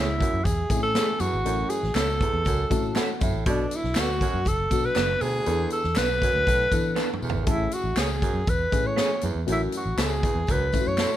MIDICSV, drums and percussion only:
0, 0, Header, 1, 2, 480
1, 0, Start_track
1, 0, Key_signature, 3, "major"
1, 0, Tempo, 501253
1, 1394, Time_signature, 4, 2, 24, 8
1, 10694, End_track
2, 0, Start_track
2, 0, Title_t, "Drums"
2, 196, Note_on_c, 9, 36, 75
2, 210, Note_on_c, 9, 42, 73
2, 292, Note_off_c, 9, 36, 0
2, 306, Note_off_c, 9, 42, 0
2, 432, Note_on_c, 9, 54, 49
2, 433, Note_on_c, 9, 36, 83
2, 444, Note_on_c, 9, 42, 75
2, 527, Note_off_c, 9, 54, 0
2, 529, Note_off_c, 9, 36, 0
2, 540, Note_off_c, 9, 42, 0
2, 670, Note_on_c, 9, 36, 85
2, 670, Note_on_c, 9, 54, 60
2, 671, Note_on_c, 9, 42, 79
2, 766, Note_off_c, 9, 36, 0
2, 766, Note_off_c, 9, 54, 0
2, 767, Note_off_c, 9, 42, 0
2, 910, Note_on_c, 9, 38, 93
2, 916, Note_on_c, 9, 42, 70
2, 918, Note_on_c, 9, 39, 82
2, 918, Note_on_c, 9, 54, 84
2, 1005, Note_off_c, 9, 38, 0
2, 1012, Note_off_c, 9, 42, 0
2, 1014, Note_off_c, 9, 39, 0
2, 1014, Note_off_c, 9, 54, 0
2, 1144, Note_on_c, 9, 54, 52
2, 1146, Note_on_c, 9, 42, 72
2, 1240, Note_off_c, 9, 54, 0
2, 1242, Note_off_c, 9, 42, 0
2, 1392, Note_on_c, 9, 54, 35
2, 1395, Note_on_c, 9, 42, 77
2, 1488, Note_off_c, 9, 54, 0
2, 1491, Note_off_c, 9, 42, 0
2, 1625, Note_on_c, 9, 42, 67
2, 1640, Note_on_c, 9, 54, 49
2, 1721, Note_off_c, 9, 42, 0
2, 1735, Note_off_c, 9, 54, 0
2, 1760, Note_on_c, 9, 38, 31
2, 1855, Note_off_c, 9, 38, 0
2, 1867, Note_on_c, 9, 39, 83
2, 1867, Note_on_c, 9, 54, 85
2, 1875, Note_on_c, 9, 42, 79
2, 1877, Note_on_c, 9, 38, 113
2, 1963, Note_off_c, 9, 39, 0
2, 1963, Note_off_c, 9, 54, 0
2, 1971, Note_off_c, 9, 42, 0
2, 1973, Note_off_c, 9, 38, 0
2, 2114, Note_on_c, 9, 36, 84
2, 2125, Note_on_c, 9, 42, 71
2, 2209, Note_off_c, 9, 36, 0
2, 2221, Note_off_c, 9, 42, 0
2, 2345, Note_on_c, 9, 54, 49
2, 2355, Note_on_c, 9, 36, 79
2, 2364, Note_on_c, 9, 42, 78
2, 2441, Note_off_c, 9, 54, 0
2, 2451, Note_off_c, 9, 36, 0
2, 2460, Note_off_c, 9, 42, 0
2, 2593, Note_on_c, 9, 36, 80
2, 2593, Note_on_c, 9, 54, 57
2, 2596, Note_on_c, 9, 42, 70
2, 2689, Note_off_c, 9, 36, 0
2, 2689, Note_off_c, 9, 54, 0
2, 2692, Note_off_c, 9, 42, 0
2, 2831, Note_on_c, 9, 39, 84
2, 2831, Note_on_c, 9, 54, 86
2, 2832, Note_on_c, 9, 38, 89
2, 2838, Note_on_c, 9, 42, 66
2, 2927, Note_off_c, 9, 38, 0
2, 2927, Note_off_c, 9, 39, 0
2, 2927, Note_off_c, 9, 54, 0
2, 2934, Note_off_c, 9, 42, 0
2, 3069, Note_on_c, 9, 54, 47
2, 3074, Note_on_c, 9, 42, 71
2, 3078, Note_on_c, 9, 36, 89
2, 3165, Note_off_c, 9, 54, 0
2, 3169, Note_off_c, 9, 42, 0
2, 3174, Note_off_c, 9, 36, 0
2, 3313, Note_on_c, 9, 42, 86
2, 3315, Note_on_c, 9, 36, 111
2, 3409, Note_off_c, 9, 42, 0
2, 3411, Note_off_c, 9, 36, 0
2, 3553, Note_on_c, 9, 42, 67
2, 3556, Note_on_c, 9, 54, 51
2, 3649, Note_off_c, 9, 42, 0
2, 3652, Note_off_c, 9, 54, 0
2, 3680, Note_on_c, 9, 38, 32
2, 3775, Note_off_c, 9, 38, 0
2, 3783, Note_on_c, 9, 39, 88
2, 3783, Note_on_c, 9, 54, 91
2, 3790, Note_on_c, 9, 42, 85
2, 3792, Note_on_c, 9, 38, 109
2, 3878, Note_off_c, 9, 39, 0
2, 3878, Note_off_c, 9, 54, 0
2, 3886, Note_off_c, 9, 42, 0
2, 3887, Note_off_c, 9, 38, 0
2, 4031, Note_on_c, 9, 36, 77
2, 4038, Note_on_c, 9, 42, 78
2, 4040, Note_on_c, 9, 54, 38
2, 4127, Note_off_c, 9, 36, 0
2, 4134, Note_off_c, 9, 42, 0
2, 4136, Note_off_c, 9, 54, 0
2, 4262, Note_on_c, 9, 54, 48
2, 4271, Note_on_c, 9, 36, 78
2, 4278, Note_on_c, 9, 42, 74
2, 4358, Note_off_c, 9, 54, 0
2, 4367, Note_off_c, 9, 36, 0
2, 4373, Note_off_c, 9, 42, 0
2, 4509, Note_on_c, 9, 36, 79
2, 4509, Note_on_c, 9, 54, 59
2, 4512, Note_on_c, 9, 42, 69
2, 4605, Note_off_c, 9, 36, 0
2, 4605, Note_off_c, 9, 54, 0
2, 4607, Note_off_c, 9, 42, 0
2, 4747, Note_on_c, 9, 39, 85
2, 4747, Note_on_c, 9, 54, 85
2, 4749, Note_on_c, 9, 38, 92
2, 4755, Note_on_c, 9, 42, 64
2, 4842, Note_off_c, 9, 39, 0
2, 4842, Note_off_c, 9, 54, 0
2, 4844, Note_off_c, 9, 38, 0
2, 4851, Note_off_c, 9, 42, 0
2, 4988, Note_on_c, 9, 46, 50
2, 4989, Note_on_c, 9, 54, 49
2, 5084, Note_off_c, 9, 46, 0
2, 5085, Note_off_c, 9, 54, 0
2, 5230, Note_on_c, 9, 42, 83
2, 5234, Note_on_c, 9, 54, 35
2, 5326, Note_off_c, 9, 42, 0
2, 5329, Note_off_c, 9, 54, 0
2, 5460, Note_on_c, 9, 42, 67
2, 5471, Note_on_c, 9, 54, 48
2, 5556, Note_off_c, 9, 42, 0
2, 5567, Note_off_c, 9, 54, 0
2, 5590, Note_on_c, 9, 38, 31
2, 5686, Note_off_c, 9, 38, 0
2, 5703, Note_on_c, 9, 39, 95
2, 5703, Note_on_c, 9, 54, 90
2, 5712, Note_on_c, 9, 42, 90
2, 5714, Note_on_c, 9, 38, 102
2, 5799, Note_off_c, 9, 39, 0
2, 5799, Note_off_c, 9, 54, 0
2, 5808, Note_off_c, 9, 42, 0
2, 5810, Note_off_c, 9, 38, 0
2, 5953, Note_on_c, 9, 54, 39
2, 5954, Note_on_c, 9, 36, 75
2, 5966, Note_on_c, 9, 42, 77
2, 6049, Note_off_c, 9, 54, 0
2, 6050, Note_off_c, 9, 36, 0
2, 6062, Note_off_c, 9, 42, 0
2, 6193, Note_on_c, 9, 54, 49
2, 6195, Note_on_c, 9, 36, 76
2, 6207, Note_on_c, 9, 42, 80
2, 6289, Note_off_c, 9, 54, 0
2, 6290, Note_off_c, 9, 36, 0
2, 6303, Note_off_c, 9, 42, 0
2, 6432, Note_on_c, 9, 36, 80
2, 6432, Note_on_c, 9, 54, 59
2, 6434, Note_on_c, 9, 42, 76
2, 6527, Note_off_c, 9, 36, 0
2, 6528, Note_off_c, 9, 54, 0
2, 6529, Note_off_c, 9, 42, 0
2, 6675, Note_on_c, 9, 39, 80
2, 6675, Note_on_c, 9, 54, 82
2, 6677, Note_on_c, 9, 38, 52
2, 6771, Note_off_c, 9, 39, 0
2, 6771, Note_off_c, 9, 54, 0
2, 6773, Note_off_c, 9, 38, 0
2, 6831, Note_on_c, 9, 45, 65
2, 6918, Note_on_c, 9, 54, 47
2, 6927, Note_off_c, 9, 45, 0
2, 6985, Note_on_c, 9, 43, 101
2, 7013, Note_off_c, 9, 54, 0
2, 7081, Note_off_c, 9, 43, 0
2, 7149, Note_on_c, 9, 42, 84
2, 7153, Note_on_c, 9, 36, 100
2, 7244, Note_off_c, 9, 42, 0
2, 7249, Note_off_c, 9, 36, 0
2, 7386, Note_on_c, 9, 42, 64
2, 7398, Note_on_c, 9, 54, 51
2, 7482, Note_off_c, 9, 42, 0
2, 7494, Note_off_c, 9, 54, 0
2, 7629, Note_on_c, 9, 39, 97
2, 7629, Note_on_c, 9, 54, 96
2, 7632, Note_on_c, 9, 42, 82
2, 7634, Note_on_c, 9, 38, 108
2, 7724, Note_off_c, 9, 39, 0
2, 7724, Note_off_c, 9, 54, 0
2, 7727, Note_off_c, 9, 42, 0
2, 7729, Note_off_c, 9, 38, 0
2, 7873, Note_on_c, 9, 36, 79
2, 7877, Note_on_c, 9, 54, 34
2, 7878, Note_on_c, 9, 42, 71
2, 7969, Note_off_c, 9, 36, 0
2, 7972, Note_off_c, 9, 54, 0
2, 7974, Note_off_c, 9, 42, 0
2, 8109, Note_on_c, 9, 54, 49
2, 8115, Note_on_c, 9, 36, 89
2, 8118, Note_on_c, 9, 42, 72
2, 8205, Note_off_c, 9, 54, 0
2, 8210, Note_off_c, 9, 36, 0
2, 8214, Note_off_c, 9, 42, 0
2, 8354, Note_on_c, 9, 36, 77
2, 8360, Note_on_c, 9, 42, 70
2, 8363, Note_on_c, 9, 54, 55
2, 8450, Note_off_c, 9, 36, 0
2, 8456, Note_off_c, 9, 42, 0
2, 8459, Note_off_c, 9, 54, 0
2, 8592, Note_on_c, 9, 38, 89
2, 8599, Note_on_c, 9, 42, 68
2, 8605, Note_on_c, 9, 39, 80
2, 8605, Note_on_c, 9, 54, 84
2, 8688, Note_off_c, 9, 38, 0
2, 8694, Note_off_c, 9, 42, 0
2, 8701, Note_off_c, 9, 39, 0
2, 8701, Note_off_c, 9, 54, 0
2, 8823, Note_on_c, 9, 42, 69
2, 8838, Note_on_c, 9, 54, 45
2, 8919, Note_off_c, 9, 42, 0
2, 8934, Note_off_c, 9, 54, 0
2, 9074, Note_on_c, 9, 42, 87
2, 9085, Note_on_c, 9, 54, 32
2, 9170, Note_off_c, 9, 42, 0
2, 9181, Note_off_c, 9, 54, 0
2, 9310, Note_on_c, 9, 42, 67
2, 9327, Note_on_c, 9, 54, 48
2, 9405, Note_off_c, 9, 42, 0
2, 9423, Note_off_c, 9, 54, 0
2, 9558, Note_on_c, 9, 42, 88
2, 9560, Note_on_c, 9, 38, 106
2, 9561, Note_on_c, 9, 39, 94
2, 9561, Note_on_c, 9, 54, 89
2, 9654, Note_off_c, 9, 42, 0
2, 9655, Note_off_c, 9, 38, 0
2, 9657, Note_off_c, 9, 39, 0
2, 9657, Note_off_c, 9, 54, 0
2, 9799, Note_on_c, 9, 36, 81
2, 9809, Note_on_c, 9, 54, 36
2, 9810, Note_on_c, 9, 42, 75
2, 9895, Note_off_c, 9, 36, 0
2, 9904, Note_off_c, 9, 54, 0
2, 9906, Note_off_c, 9, 42, 0
2, 10027, Note_on_c, 9, 54, 49
2, 10040, Note_on_c, 9, 36, 82
2, 10047, Note_on_c, 9, 42, 82
2, 10123, Note_off_c, 9, 54, 0
2, 10136, Note_off_c, 9, 36, 0
2, 10143, Note_off_c, 9, 42, 0
2, 10271, Note_on_c, 9, 54, 58
2, 10281, Note_on_c, 9, 36, 75
2, 10288, Note_on_c, 9, 42, 73
2, 10366, Note_off_c, 9, 54, 0
2, 10377, Note_off_c, 9, 36, 0
2, 10384, Note_off_c, 9, 42, 0
2, 10514, Note_on_c, 9, 39, 85
2, 10514, Note_on_c, 9, 54, 82
2, 10516, Note_on_c, 9, 38, 90
2, 10522, Note_on_c, 9, 42, 66
2, 10610, Note_off_c, 9, 39, 0
2, 10610, Note_off_c, 9, 54, 0
2, 10612, Note_off_c, 9, 38, 0
2, 10618, Note_off_c, 9, 42, 0
2, 10694, End_track
0, 0, End_of_file